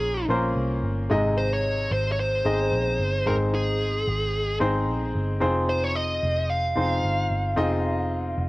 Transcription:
0.00 0.25 A#1 loud
0.00 1.12 A#2 medium
0.00 0.29 A#3 medium
0.00 0.29 C#4 medium
0.00 0.29 F4 medium
0.00 0.26 G#4 medium
0.00 0.30 A#4 medium
0.00 1.12 C#5 medium
0.29 0.54 A#1 loud
0.29 0.86 A#3 loud
0.29 0.87 C#4 medium
0.29 0.87 F4 medium
0.29 0.87 A#4 medium
0.29 0.87 C5 loud
0.56 0.81 C2 medium
0.84 1.08 G1 medium
1.10 1.87 G#1 loud
1.10 1.87 G#2 medium
1.10 1.87 C3 medium
1.10 1.87 G#3 loud
1.10 1.87 D#4 medium
1.10 1.87 G#4 medium
1.10 1.87 D#5 loud
1.38 1.53 C5 loud
1.54 1.92 C#5 medium
1.91 2.41 G#1 loud
1.91 2.12 C5 loud
2.12 2.18 C#5 medium
2.20 3.30 C5 loud
2.45 2.70 G#1 loud
2.45 3.02 G#3 medium
2.45 3.03 C4 medium
2.45 3.03 D#4 medium
2.45 3.03 G#4 medium
2.45 3.03 D#5 loud
2.72 2.97 A#1 loud
2.99 3.24 G1 medium
3.26 4.03 G#1 loud
3.26 4.03 G#2 medium
3.26 4.02 G#3 medium
3.26 4.03 C4 medium
3.26 4.03 D#4 medium
3.26 4.03 G#4 medium
3.26 3.34 A#4 loud
3.26 4.03 C5 medium
3.55 4.58 G#4 medium
4.08 4.57 G#1 loud
4.60 4.88 G#1 loud
4.60 5.17 G#3 loud
4.60 5.18 C4 loud
4.60 5.18 D#4 medium
4.60 5.18 G#4 medium
4.60 5.18 C5 loud
4.88 5.13 A#1 loud
5.15 5.40 G1 loud
5.40 6.19 F1 loud
5.40 6.17 C4 loud
5.40 6.18 D#4 medium
5.40 6.18 F4 medium
5.40 6.18 G#4 loud
5.40 6.18 C5 loud
5.69 5.84 C5 loud
5.84 5.95 C#5 medium
5.95 6.51 D#5 loud
6.23 6.73 F1 loud
6.50 8.49 F5 loud
6.75 7.02 F1 loud
6.75 7.33 C4 medium
6.75 7.33 D#4 medium
6.75 7.33 F4 medium
6.75 7.33 G#4 medium
6.75 7.34 C5 medium
7.03 7.28 G1 loud
7.30 7.55 G1 loud
7.56 8.34 F1 loud
7.56 8.33 C4 medium
7.56 8.33 D#4 medium
7.56 8.33 F4 medium
7.56 8.34 G#4 medium
7.56 8.34 D#5 loud
8.38 8.49 F1 loud

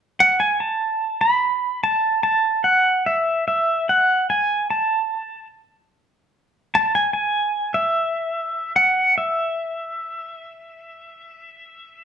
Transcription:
0.20 0.39 F#5 medium
0.40 0.61 G#5 medium
0.60 1.21 A5 medium
1.21 1.83 B5 medium
1.84 2.22 A5 medium
2.23 2.66 A5 medium
2.64 3.07 F#5 medium
3.06 3.46 E5 medium
3.48 3.89 E5 medium
3.89 4.29 F#5 medium
4.30 4.70 G#5 medium
4.70 5.47 A5 medium
6.75 6.94 A5 loud
6.95 7.12 G#5 medium
7.13 7.76 G#5 medium
7.74 8.76 E5 medium
8.76 9.17 F#5 medium
9.18 12.04 E5 medium

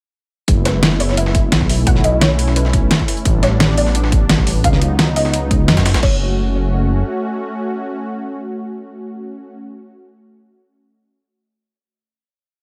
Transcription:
0.48 1.54 F#1 loud
0.48 1.68 G#3 medium
0.48 1.68 B3 medium
0.48 1.68 E4 medium
0.48 kick loud
0.48 closed hi-hat loud
0.48 closed hi-hat medium
0.65 0.98 B4 medium
0.65 snare medium
0.65 closed hi-hat medium
0.83 snare loud
0.83 closed hi-hat loud
0.83 closed hi-hat medium
0.92 snare soft
1.00 1.18 C#5 medium
1.00 closed hi-hat medium
1.00 open hi-hat medium
1.09 snare soft
1.17 1.89 E5 loud
1.17 closed hi-hat medium
1.26 snare soft
1.35 kick loud
1.35 closed hi-hat medium
1.52 1.85 B1 medium
1.52 snare loud
1.52 closed hi-hat loud
1.52 closed hi-hat medium
1.61 kick medium
1.61 snare soft
1.69 3.24 A3 medium
1.69 3.24 C#4 medium
1.69 3.24 E4 medium
1.69 open hi-hat medium
1.87 2.89 B1 loud
1.87 2.05 F#5 loud
1.87 kick loud
1.87 closed hi-hat loud
1.87 closed hi-hat medium
1.96 snare soft
2.04 2.12 D#5 loud
2.04 closed hi-hat medium
2.21 2.54 C#5 loud
2.21 snare loud
2.21 closed hi-hat loud
2.21 closed hi-hat medium
2.39 closed hi-hat medium
2.39 open hi-hat medium
2.48 snare soft
2.56 3.05 B4 medium
2.56 closed hi-hat medium
2.65 snare soft
2.73 kick loud
2.73 closed hi-hat medium
2.91 snare loud
2.91 closed hi-hat medium
2.99 kick medium
2.99 snare soft
3.08 closed hi-hat medium
3.08 open hi-hat medium
3.17 closed hi-hat soft
3.25 4.28 A1 loud
3.25 4.63 G3 medium
3.25 4.63 B3 medium
3.25 4.63 D4 medium
3.25 kick loud
3.25 closed hi-hat medium
3.43 3.75 C#5 medium
3.43 snare medium
3.43 closed hi-hat medium
3.60 snare loud
3.60 closed hi-hat medium
3.69 snare soft
3.77 4.67 D5 medium
3.77 closed hi-hat medium
3.77 open hi-hat medium
3.86 snare soft
3.95 closed hi-hat medium
4.04 snare soft
4.12 kick loud
4.12 closed hi-hat medium
4.29 4.63 A1 medium
4.29 snare loud
4.29 closed hi-hat medium
4.38 kick medium
4.38 snare soft
4.47 open hi-hat medium
4.64 5.70 C#2 loud
4.64 6.01 F#3 medium
4.64 6.02 B3 medium
4.64 6.02 D#4 medium
4.64 5.18 F5 loud
4.64 kick loud
4.64 closed hi-hat medium
4.73 snare soft
4.81 closed hi-hat medium
4.99 snare loud
4.99 closed hi-hat medium
5.16 5.49 D#5 medium
5.16 closed hi-hat medium
5.16 open hi-hat medium
5.25 snare soft
5.33 closed hi-hat medium
5.51 kick loud
5.51 closed hi-hat medium
5.68 5.96 F#2 medium
5.68 snare loud
5.68 closed hi-hat medium
5.77 kick medium
5.77 snare loud
5.77 closed hi-hat medium
5.85 snare loud
5.85 closed hi-hat medium
5.85 open hi-hat medium
5.94 6.02 G#1 medium
5.94 snare loud
5.94 closed hi-hat medium
6.03 7.03 F#1 loud
6.03 9.56 A3 medium
6.03 9.56 C#4 medium
6.03 9.56 F#4 medium
6.03 10.26 C#5 medium
6.03 kick loud
6.03 crash medium

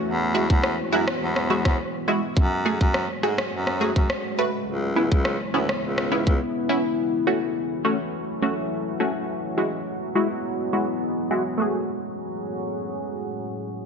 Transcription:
0.00 2.33 E3 medium
0.00 2.33 F#3 medium
0.00 2.33 F#4 medium
0.06 0.45 E2 loud
0.06 2.34 G#3 medium
0.06 2.34 B3 medium
0.35 0.47 G#3 medium
0.35 0.47 E4 medium
0.35 0.47 F#4 loud
0.50 0.76 E2 loud
0.50 kick medium
0.63 cross-stick medium
0.92 1.06 F#2 medium
0.92 1.05 G#3 medium
0.92 1.05 E4 medium
0.92 1.05 F#4 loud
1.08 cross-stick loud
1.21 1.61 E2 loud
1.36 cross-stick medium
1.50 1.62 G#3 medium
1.50 1.62 E4 medium
1.50 1.62 F#4 loud
1.65 1.77 E2 medium
1.65 kick loud
1.65 cross-stick medium
2.08 2.20 G#3 medium
2.08 2.20 E4 medium
2.08 2.20 F#4 loud
2.37 2.76 F#2 loud
2.37 4.65 C#3 medium
2.37 4.65 F#3 medium
2.37 6.94 G#3 medium
2.37 4.65 A3 medium
2.37 4.65 F#4 medium
2.37 kick loud
2.65 2.78 A3 medium
2.65 2.78 F#4 medium
2.65 2.78 G#4 loud
2.81 3.07 F#2 loud
2.81 kick medium
2.94 cross-stick medium
3.23 3.37 G#2 medium
3.23 3.35 A3 medium
3.23 3.35 F#4 medium
3.23 3.35 G#4 loud
3.38 cross-stick loud
3.52 3.91 F#2 loud
3.67 cross-stick medium
3.81 3.93 A3 medium
3.81 3.93 F#4 medium
3.81 3.93 G#4 medium
3.96 4.08 F#2 medium
3.96 kick medium
4.10 cross-stick medium
4.38 4.51 A3 medium
4.38 4.51 F#4 medium
4.38 4.51 B4 loud
4.67 5.07 C#2 loud
4.67 6.96 C#3 medium
4.67 11.56 E3 medium
4.67 6.96 B3 medium
4.67 6.96 E4 medium
4.96 5.08 B3 medium
4.96 5.08 C#4 medium
4.96 5.08 E4 loud
5.12 5.37 C#2 loud
5.12 kick medium
5.25 cross-stick medium
5.54 5.68 D2 medium
5.54 5.66 B3 medium
5.54 5.66 C#4 medium
5.54 5.66 E4 medium
5.69 cross-stick medium
5.83 6.22 C#2 medium
5.98 cross-stick medium
6.12 6.24 B3 medium
6.12 6.24 C#4 medium
6.12 6.24 E4 medium
6.27 6.39 C#2 medium
6.27 kick medium
6.69 6.81 B3 medium
6.69 6.81 C#4 medium
6.69 6.81 E4 medium
6.98 9.27 F#3 medium
6.98 9.27 A3 medium
6.98 9.27 C#4 medium
6.98 11.56 F#4 medium
7.27 7.39 A3 medium
7.27 7.39 C#4 medium
7.27 7.39 F#4 medium
7.85 7.97 A3 medium
7.85 7.97 C#4 medium
7.85 7.97 F#4 medium
8.42 8.55 A3 medium
8.42 8.55 C#4 medium
8.42 8.55 F#4 medium
9.00 9.12 A3 medium
9.00 9.12 C#4 medium
9.00 9.12 F#4 medium
9.29 11.57 F#3 medium
9.29 11.57 G#3 medium
9.29 11.57 B3 medium
9.58 9.70 G#3 medium
9.58 9.70 E4 medium
9.58 9.70 F#4 loud
10.15 10.28 G#3 medium
10.15 10.28 E4 medium
10.15 10.28 F#4 medium
10.73 10.85 G#3 medium
10.73 10.85 E4 medium
10.73 10.85 F#4 medium
11.31 11.43 G#3 medium
11.31 11.43 E4 medium
11.31 11.43 F#4 loud
11.58 13.86 A2 medium
11.58 13.86 F#3 medium
11.58 13.86 A3 medium
11.58 13.86 C#4 medium
11.58 13.86 F#4 medium
11.58 13.86 G#4 medium
11.62 13.86 G#4 medium

